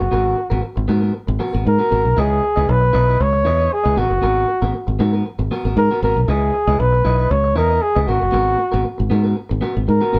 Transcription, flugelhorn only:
0, 0, Header, 1, 2, 480
1, 0, Start_track
1, 0, Tempo, 513699
1, 107, Time_signature, 4, 2, 24, 8
1, 9524, End_track
2, 0, Start_track
2, 0, Title_t, "Flugelhorn"
2, 0, Program_c, 0, 56
2, 0, Note_on_c, 0, 66, 92
2, 837, Note_off_c, 0, 66, 0
2, 1570, Note_on_c, 0, 70, 101
2, 2053, Note_on_c, 0, 68, 107
2, 2067, Note_off_c, 0, 70, 0
2, 2526, Note_on_c, 0, 71, 101
2, 2540, Note_off_c, 0, 68, 0
2, 3004, Note_on_c, 0, 73, 108
2, 3018, Note_off_c, 0, 71, 0
2, 3483, Note_on_c, 0, 68, 111
2, 3497, Note_off_c, 0, 73, 0
2, 3717, Note_on_c, 0, 66, 99
2, 3731, Note_off_c, 0, 68, 0
2, 4671, Note_off_c, 0, 66, 0
2, 5396, Note_on_c, 0, 70, 105
2, 5615, Note_off_c, 0, 70, 0
2, 5639, Note_on_c, 0, 70, 97
2, 5821, Note_off_c, 0, 70, 0
2, 5821, Note_on_c, 0, 70, 73
2, 5875, Note_on_c, 0, 68, 102
2, 5889, Note_off_c, 0, 70, 0
2, 6348, Note_on_c, 0, 71, 98
2, 6362, Note_off_c, 0, 68, 0
2, 6828, Note_on_c, 0, 73, 91
2, 6842, Note_off_c, 0, 71, 0
2, 7069, Note_on_c, 0, 70, 98
2, 7083, Note_off_c, 0, 73, 0
2, 7308, Note_on_c, 0, 68, 111
2, 7322, Note_off_c, 0, 70, 0
2, 7495, Note_off_c, 0, 68, 0
2, 7495, Note_on_c, 0, 68, 64
2, 7542, Note_on_c, 0, 66, 103
2, 7556, Note_off_c, 0, 68, 0
2, 8506, Note_off_c, 0, 66, 0
2, 9244, Note_on_c, 0, 70, 98
2, 9524, Note_off_c, 0, 70, 0
2, 9524, End_track
0, 0, End_of_file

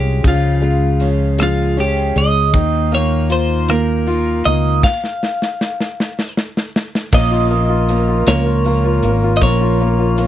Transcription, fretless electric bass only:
0, 0, Header, 1, 2, 480
1, 0, Start_track
1, 0, Tempo, 764331
1, 153, Time_signature, 6, 3, 24, 8
1, 6451, End_track
2, 0, Start_track
2, 0, Title_t, "Fretless electric bass"
2, 0, Program_c, 0, 35
2, 0, Note_on_c, 0, 36, 71
2, 141, Note_off_c, 0, 36, 0
2, 155, Note_on_c, 0, 37, 81
2, 1331, Note_off_c, 0, 37, 0
2, 1357, Note_on_c, 0, 37, 83
2, 1598, Note_off_c, 0, 37, 0
2, 1598, Note_on_c, 0, 39, 88
2, 2772, Note_off_c, 0, 39, 0
2, 2800, Note_on_c, 0, 37, 81
2, 3024, Note_off_c, 0, 37, 0
2, 4476, Note_on_c, 0, 34, 91
2, 5171, Note_off_c, 0, 34, 0
2, 5194, Note_on_c, 0, 37, 82
2, 5649, Note_off_c, 0, 37, 0
2, 5670, Note_on_c, 0, 32, 94
2, 5898, Note_off_c, 0, 32, 0
2, 5917, Note_on_c, 0, 34, 97
2, 6451, Note_off_c, 0, 34, 0
2, 6451, End_track
0, 0, End_of_file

